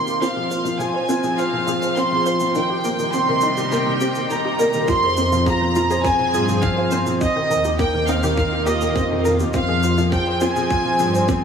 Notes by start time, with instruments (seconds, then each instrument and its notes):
Already playing: analog synth pad D#3 A#3 F4, felt piano D#3 A#3 C4 G4, violin section C6
0.07 felt piano G4, shaker
0.21 analog synth pad F3, felt piano C4, synth arpeggio sound F4, violin section F5, shaker
0.36 felt piano F3, analog synth pad C4, synth arpeggio sound G#4
0.50 felt piano F4, synth arpeggio sound C5, shaker
0.64 felt piano F3, synth arpeggio sound F4, shaker
0.79 felt piano F3, synth arpeggio sound G#4, violin section G#5, shaker
0.94 felt piano C5, synth arpeggio sound C5
1.08 felt piano C4, synth arpeggio sound F4, shaker
1.23 felt piano F3, synth arpeggio sound G#4, shaker
1.28 analog synth pad G#4
1.37 felt piano F4, synth arpeggio sound C5, violin section F5, shaker
1.53 felt piano F3
1.67 felt piano F3, synth arpeggio sound G#4, shaker
1.82 felt piano C5, shaker
1.96 felt piano C4, violin section C6, shaker
2.12 felt piano F3, synth arpeggio sound F4
2.26 felt piano F4, synth arpeggio sound C5, shaker
2.40 felt piano F3, shaker
2.55 analog synth pad C3, felt piano D#3, synth arpeggio sound D#4, violin section G5, shaker
2.70 felt piano G4, synth arpeggio sound G4
2.81 analog synth pad G3, felt piano A#3, shaker
2.85 analog synth pad D#4, synth arpeggio sound A#4
2.98 felt piano D#3, synth arpeggio sound D#4, shaker
3.12 felt piano C4, synth arpeggio sound G4, violin section C6, shaker
3.29 felt piano D#3, synth arpeggio sound A#4
3.41 felt piano D#3, synth arpeggio sound D#4, shaker
3.57 felt piano G4, synth arpeggio sound G4, shaker
3.71 felt piano A#3, synth arpeggio sound A#4, violin section G5, shaker
3.86 felt piano D#3
4.01 felt piano C4, synth arpeggio sound G4, shaker
4.15 felt piano D#3, shaker
4.30 felt piano D#3, violin section A#5, shaker
4.45 synth arpeggio sound D#4, felt piano G4
4.59 felt piano A#3, synth arpeggio sound A#4, shaker
4.73 felt piano D#3, shaker
4.88 double bass section F2, felt piano F3, analog synth pad F3, synth arpeggio sound F4, violin section C6, kick, shaker
5.04 synth arpeggio sound G#4, felt piano C5
5.17 felt piano C4, synth arpeggio sound C5, shaker
5.32 felt piano F3, analog synth pad C4, synth arpeggio sound F4, shaker
5.46 felt piano F4, synth arpeggio sound G#4, violin section A#5, kick, shaker
5.61 felt piano F3, synth arpeggio sound C5
5.68 analog synth pad G#4
5.75 felt piano F3, synth arpeggio sound F4, shaker
5.90 synth arpeggio sound G#4, felt piano C5, shaker
6.04 felt piano C4, synth arpeggio sound C5, violin section G#5, kick, shaker
6.19 felt piano F3
6.34 double bass section G2, felt piano F4, synth arpeggio sound G#4, shaker
6.48 felt piano F3, shaker
6.62 felt piano F3, violin section F5, kick, shaker
6.76 synth arpeggio sound F4, felt piano C5
6.91 felt piano C4, synth arpeggio sound C5, shaker
7.06 felt piano F3, shaker
7.21 analog synth pad D#3, felt piano C4, synth arpeggio sound D#4, violin section D#5, kick, shaker
7.36 felt piano D#3, synth arpeggio sound G4
7.50 double bass section D#2, felt piano D#3, synth arpeggio sound A#4, shaker
7.64 synth arpeggio sound D#4, felt piano G4, shaker
7.69 analog synth pad A#3
7.79 felt piano A#3, synth arpeggio sound G4, violin section G5, kick, shaker
7.94 felt piano D#3, synth arpeggio sound A#4
8.00 analog synth pad F4
8.08 felt piano C4, synth arpeggio sound D#4, violin section F5, shaker
8.23 felt piano D#3, synth arpeggio sound G4, shaker
8.37 felt piano D#3, synth arpeggio sound A#4, kick, shaker
8.52 felt piano G4
8.66 felt piano A#3, synth arpeggio sound G4, violin section D#5, shaker
8.81 felt piano D#3, shaker
8.96 double bass section F2, felt piano C4, kick, shaker
9.10 felt piano D#3, synth arpeggio sound D#4
9.25 felt piano D#3, synth arpeggio sound A#4, shaker
9.40 double bass section D#2, felt piano G4, shaker
9.54 double bass section F2, analog synth pad F3, felt piano C4, synth arpeggio sound F4, violin section F5, kick, shaker
9.67 felt piano F3, analog synth pad C4, synth arpeggio sound G#4
9.71 analog synth pad G#4
9.83 felt piano F4, synth arpeggio sound C5, shaker
9.98 felt piano F3, synth arpeggio sound F4, shaker
10.12 felt piano F3, synth arpeggio sound G#4, violin section G5, kick, shaker
10.27 synth arpeggio sound C5, felt piano C5
10.41 felt piano C4, synth arpeggio sound F4, violin section G#5, shaker
10.56 felt piano F3, synth arpeggio sound G#4, shaker
10.70 felt piano F4, synth arpeggio sound C5, kick, shaker
10.85 felt piano F3
10.99 double bass section G2, felt piano F3, synth arpeggio sound G#4, shaker
11.13 felt piano C5, shaker
11.28 felt piano C4, kick, shaker